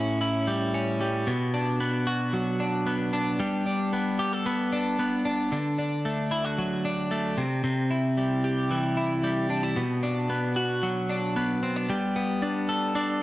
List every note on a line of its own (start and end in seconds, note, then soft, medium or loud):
0.00 1.27 A2 medium
0.00 0.73 C#4 medium
0.00 0.20 E4 medium
0.21 1.32 E4 medium
0.47 0.99 G3 medium
0.74 1.32 C#4 medium
1.01 1.32 G3 medium
1.27 3.40 B2 medium
1.54 2.59 D4 medium
1.80 2.86 B3 medium
2.07 3.45 F#4 medium
2.33 3.39 F#3 medium
2.60 3.13 D4 medium
2.86 3.92 B3 medium
3.13 3.66 D4 medium
3.40 5.52 G3 medium
3.66 4.72 D4 soft
3.93 4.45 B3 soft
4.19 4.33 G4 medium
4.33 5.58 A4 medium
4.46 4.98 B3 medium
4.73 5.25 D4 medium
4.99 5.57 B3 medium
5.25 5.57 D4 medium
5.52 7.37 D3 medium
5.78 6.84 D4 medium
6.05 7.10 A3 medium
6.31 6.45 E4 medium
6.45 7.43 F#4 medium
6.58 7.43 F#3 medium
6.85 7.43 D4 medium
7.11 7.43 A3 medium
7.38 7.63 C3 medium
7.64 9.76 C3 medium
7.91 8.96 E4 medium
8.18 9.22 G3 soft
8.44 9.82 G4 medium
8.71 9.82 E3 medium
8.97 9.50 E4 medium
9.24 9.82 G3 medium
9.50 9.63 D4 medium
9.63 9.82 E4 soft
9.76 11.89 B2 medium
10.03 11.09 D4 medium
10.30 11.36 B3 medium
10.56 11.94 F#4 medium
10.83 11.89 F#3 medium
11.10 11.63 D4 medium
11.36 12.16 B3 medium
11.63 11.76 C4 medium
11.76 11.95 D4 soft
11.90 13.23 G3 medium
12.16 13.20 B3 medium
12.42 12.95 D4 medium
12.69 13.23 A4 medium
12.95 13.23 D4 medium